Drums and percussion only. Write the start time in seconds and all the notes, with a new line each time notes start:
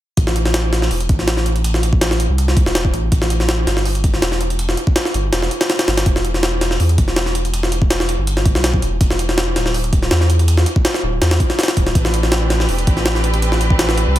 0.17 kick, closed hi-hat
0.27 snare
0.36 closed hi-hat
0.46 snare
0.54 snare, closed hi-hat
0.73 snare, closed hi-hat
0.82 snare
0.91 open hi-hat
1.01 closed hi-hat
1.09 kick, closed hi-hat
1.19 snare
1.28 snare, closed hi-hat
1.37 snare
1.46 closed hi-hat
1.56 closed hi-hat
1.64 closed hi-hat
1.74 snare
1.83 closed hi-hat
1.93 kick
2.01 snare, closed hi-hat
2.11 snare
2.20 closed hi-hat
2.38 closed hi-hat
2.48 snare
2.57 kick, closed hi-hat
2.66 snare
2.75 snare, closed hi-hat
2.85 kick
2.94 closed hi-hat
3.12 kick, closed hi-hat
3.22 snare
3.30 closed hi-hat
3.40 snare
3.49 snare, closed hi-hat
3.67 snare, closed hi-hat
3.77 snare
3.85 open hi-hat
3.95 closed hi-hat
4.04 kick, closed hi-hat
4.14 snare
4.22 snare, closed hi-hat
4.32 snare
4.41 closed hi-hat
4.50 closed hi-hat
4.59 closed hi-hat
4.69 snare
4.77 closed hi-hat
4.87 kick
4.96 snare, closed hi-hat
5.05 snare
5.14 closed hi-hat
5.33 snare, closed hi-hat
5.43 snare
5.51 closed hi-hat
5.61 snare, closed hi-hat
5.70 snare, closed hi-hat
5.79 snare, closed hi-hat
5.88 snare, closed hi-hat
5.97 snare, closed hi-hat
6.06 kick, closed hi-hat
6.16 snare
6.25 closed hi-hat
6.34 snare
6.43 snare, closed hi-hat
6.61 snare, closed hi-hat
6.71 snare
6.80 open hi-hat
6.89 closed hi-hat
6.98 kick, closed hi-hat
7.08 snare
7.16 snare, closed hi-hat
7.26 snare
7.35 closed hi-hat
7.45 closed hi-hat
7.54 closed hi-hat
7.63 snare
7.72 closed hi-hat
7.82 kick
7.90 snare, closed hi-hat
8.00 snare
8.09 closed hi-hat
8.27 closed hi-hat
8.37 snare
8.46 kick, closed hi-hat
8.55 snare
8.64 snare, closed hi-hat
8.74 kick
8.82 closed hi-hat
9.01 kick, closed hi-hat
9.11 snare
9.19 closed hi-hat
9.29 snare
9.38 snare, closed hi-hat
9.56 snare, closed hi-hat
9.66 snare
9.74 open hi-hat
9.84 closed hi-hat
9.93 kick, closed hi-hat
10.02 snare
10.11 snare, closed hi-hat
10.21 snare
10.30 closed hi-hat
10.39 closed hi-hat
10.48 closed hi-hat
10.57 snare
10.66 closed hi-hat
10.76 kick
10.85 snare, closed hi-hat
10.94 snare
11.22 snare, closed hi-hat
11.31 snare, closed hi-hat
11.40 kick, closed hi-hat
11.50 snare
11.59 snare, closed hi-hat
11.63 snare, closed hi-hat
11.68 snare, closed hi-hat
11.77 kick, closed hi-hat
11.87 snare
11.95 kick, closed hi-hat
12.05 snare
12.14 closed hi-hat
12.23 snare
12.32 snare, closed hi-hat
12.50 snare, closed hi-hat
12.60 snare
12.69 open hi-hat
12.79 closed hi-hat
12.87 kick, closed hi-hat
12.97 snare
13.06 snare, closed hi-hat
13.15 snare
13.24 closed hi-hat
13.34 closed hi-hat
13.42 closed hi-hat
13.52 snare
13.61 closed hi-hat
13.70 kick
13.79 snare, closed hi-hat
13.89 snare
13.98 closed hi-hat
14.16 closed hi-hat